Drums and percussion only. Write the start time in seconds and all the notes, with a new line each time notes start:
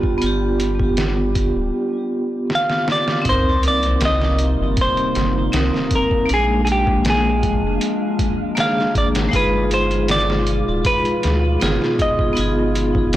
0.03 kick
0.22 closed hi-hat
0.60 closed hi-hat
0.80 kick
0.97 snare, closed hi-hat
1.35 kick, closed hi-hat
2.50 snare
2.70 snare
2.88 snare
3.08 snare
3.25 kick, closed hi-hat
3.63 closed hi-hat
3.83 closed hi-hat
4.01 snare, closed hi-hat
4.22 snare
4.39 closed hi-hat
4.77 kick, closed hi-hat
4.97 closed hi-hat
5.15 snare, closed hi-hat
5.53 snare, closed hi-hat
5.74 snare
5.91 kick, closed hi-hat
6.11 kick
6.29 closed hi-hat
6.67 closed hi-hat
6.87 kick
7.05 snare, closed hi-hat
7.43 kick, closed hi-hat
7.81 closed hi-hat
8.19 kick, closed hi-hat
8.57 snare, closed hi-hat
8.78 snare
8.95 kick, closed hi-hat
9.15 snare, closed hi-hat
9.33 kick, closed hi-hat
9.71 closed hi-hat
9.91 closed hi-hat
10.08 snare, closed hi-hat
10.30 snare
10.47 closed hi-hat
10.85 kick, closed hi-hat
11.05 closed hi-hat
11.23 snare, closed hi-hat
11.61 snare, closed hi-hat
11.82 snare
11.99 kick, closed hi-hat
12.19 kick
12.37 closed hi-hat
12.75 closed hi-hat
12.95 kick
13.13 closed hi-hat